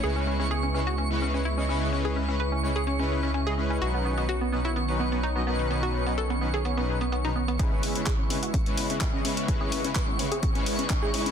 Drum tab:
HH |x--xx--xxx-xx--x|x--xx--xxx-xx--x|x--xx--xxx-xx--x|xx-xxx-xxx-xxx-x|
CP |----------------|----------------|----------------|----------------|
BD |----------------|----------------|----------------|----------------|

HH |x-oxx-oxxxoxx-ox|x-oxx-oxxxoxx-ox|
CP |----x-------x---|----x-------x---|
BD |o---o---o---o---|o---o---o---o---|